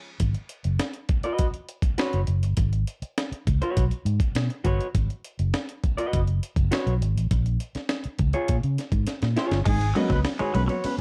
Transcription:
0.20 G#1, kick, closed hi-hat
0.34 closed hi-hat
0.49 closed hi-hat
0.64 F#1, closed hi-hat
0.79 snare, closed hi-hat
0.93 closed hi-hat
1.09 kick, closed hi-hat
1.23 F#4 B4 D#5, closed hi-hat
1.39 kick, closed hi-hat
1.54 closed hi-hat
1.69 closed hi-hat
1.82 kick, closed hi-hat
1.98 F#4 B4 C#5, snare, closed hi-hat
2.13 F#1, closed hi-hat
2.27 F#1, closed hi-hat
2.43 G1, closed hi-hat
2.57 G#1, kick, closed hi-hat
2.73 closed hi-hat
2.87 closed hi-hat
3.02 muted fingered electric bass stroke, closed hi-hat
3.18 snare, closed hi-hat
3.32 muted fingered electric bass stroke, closed hi-hat
3.47 C#2, kick, closed hi-hat
3.62 F#4 B4 C#5, closed hi-hat
3.77 B1, kick, closed hi-hat
3.91 closed hi-hat
4.05 G#2, closed hi-hat
4.20 kick, closed hi-hat
4.35 B2, snare, closed hi-hat
4.50 closed hi-hat
4.64 G1 F#4 B4 C#5, kick, closed hi-hat
4.81 closed hi-hat
4.95 G#1, kick, closed hi-hat
5.10 closed hi-hat
5.24 closed hi-hat
5.39 F#1, closed hi-hat
5.54 snare, closed hi-hat
5.69 closed hi-hat
5.84 kick, closed hi-hat
5.97 F#4 B4 D#5, closed hi-hat
6.13 F#1, kick, closed hi-hat
6.27 closed hi-hat
6.43 closed hi-hat
6.56 F#1, kick, closed hi-hat
6.71 F#4 B4 C#5, snare, closed hi-hat
6.87 B1, closed hi-hat
7.01 G#1, closed hi-hat
7.16 A1, closed hi-hat
7.31 A#1, kick, closed hi-hat
7.46 closed hi-hat
7.60 closed hi-hat
7.75 muted fingered electric bass stroke, snare, closed hi-hat
7.89 snare, closed hi-hat
8.04 muted fingered electric bass stroke, closed hi-hat
8.19 C#2, kick, closed hi-hat
8.33 F4 G#4 C#5, closed hi-hat
8.48 A#2, kick, closed hi-hat
8.63 C#3, closed hi-hat
8.78 snare, closed hi-hat
8.92 G#2, kick, closed hi-hat
9.07 snare, closed hi-hat
9.22 A#2, snare, closed hi-hat
9.36 F4 G#4 C#5, snare, closed hi-hat
9.51 G1, snare, closed hi-hat
9.65 G#1 G#2 D#3 G#3 G#4, kick, crash, ride
9.81 ride
9.95 F#3 A#3 B3 C#4 F#4 B4 D#5, muted clean electric guitar stroke, ride
10.10 C#2 F#3 B3 C#4 B4, kick, snare, ride
10.25 B3 C#4, snare, ride
10.39 G#2 D#3 G#3 F#4 G#4 B4 C#5, muted fingered electric bass stroke, ride
10.54 B1 F#3 A#3 B3 C#4 B4, muted clean electric guitar stroke, ride
10.68 F#3 F#4 B4 C#5, ride
10.84 B3 C#4 B4, muted fingered electric bass stroke, ride

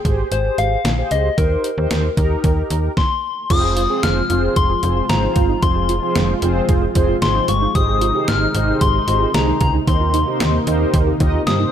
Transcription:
0.05 G#1 G4 G#4 C5, kick, closed hi-hat
0.32 G#1 C5, closed hi-hat
0.58 G#1 F5, closed hi-hat
0.85 A#1, snare, closed hi-hat
0.98 G4 G#4 C5
1.11 C#2 D#5, closed hi-hat
1.38 D#2 D#4 G4 A#4 C5, kick, closed hi-hat
1.64 closed hi-hat
1.78 D#2 D#4 G4 C5
1.91 D#2, snare, closed hi-hat
2.17 D#2 D#4 G4 A#4, kick, closed hi-hat
2.44 D#2, kick, closed hi-hat
2.70 D#2, closed hi-hat
2.97 C6, kick, snare
3.50 F1 C3 F3 G#3 C4 F4 G#4 C5 D#6, kick, closed hi-hat, crash
3.63 G#4
3.77 F4, closed hi-hat
3.90 C4 F4 G#4 C5
4.03 F1 F4 F6, snare, closed hi-hat
4.30 F1 C4 F4 G#4 C5, closed hi-hat
4.56 F1 G#4 C6, kick, closed hi-hat
4.70 G#4
4.83 F1 C4 F4 G#4 C5, closed hi-hat
4.96 F4
5.09 G#1 C4 F4 G#4 C5 A#5, snare, closed hi-hat
5.23 D#4
5.36 G1 F4, kick, closed hi-hat
5.49 D#4
5.63 F1 C4 F4 G#4 C5 C6, kick, closed hi-hat
5.76 G#4
5.89 F4, closed hi-hat
6.02 C4 F4 G#4 C5
6.15 F1 F4, snare, closed hi-hat
6.42 F1 C4 F4 G#4 C5, closed hi-hat
6.69 F1 G#4, kick, closed hi-hat
6.82 G#4
6.95 F1 C4 F4 G#4 C5, kick, closed hi-hat
7.09 F4
7.22 G#1 C4 F4 G#4 C5 C6, snare, closed hi-hat
7.35 D#4
7.48 G1 F4 C#6, closed hi-hat
7.62 D#4
7.75 G#1 D#3 D#4 G4 G#4 C5 D#6, kick, closed hi-hat
7.88 G#4
8.01 F4, closed hi-hat
8.15 D#4 G4 G#4 C5
8.28 G#1 D#4 F6, snare, closed hi-hat
8.55 G#1 D#4 G4 G#4 C5, closed hi-hat
8.81 G#1 G4 C6, kick, closed hi-hat
8.94 G4
9.08 G#1 D#4 F4 G4 G#4 C5, closed hi-hat
9.21 F4
9.34 C2 D#4 G4 G#4 C5 A#5, snare, closed hi-hat
9.48 D#4
9.61 C#2 F4 A#5, kick, closed hi-hat
9.74 D#4
9.87 D#2 A#3 D#4 G4 A#4 C5 C6, kick, closed hi-hat
10.01 F4
10.14 D#4, closed hi-hat
10.27 D#4 G4 A#4 C5
10.40 D#2 D#4, snare, closed hi-hat
10.67 D#2 D#4 G4 A#4 C5, closed hi-hat
10.94 D#2 G4, kick, closed hi-hat
11.07 G4
11.20 D#2 D#4 F4 G4 A#4 D#5, kick, closed hi-hat
11.34 F4
11.47 G2 D#4 G4 A#4 C5 D#6, snare, closed hi-hat
11.60 D#4

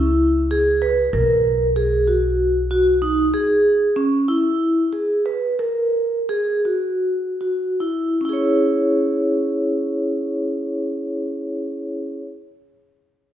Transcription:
Already playing: C#2 E4
0.51 G#4
0.82 B4
1.13 B1 A#4
1.76 G#4
2.07 F#4
2.71 F#4
3.02 D#4
3.34 G#4
3.96 C#4
4.28 E4
4.93 G#4
5.26 B4
5.59 A#4
6.29 G#4
6.65 F#4
7.41 F#4
7.80 E4
8.21 C#4 E4
8.29 G#4
8.33 C#5

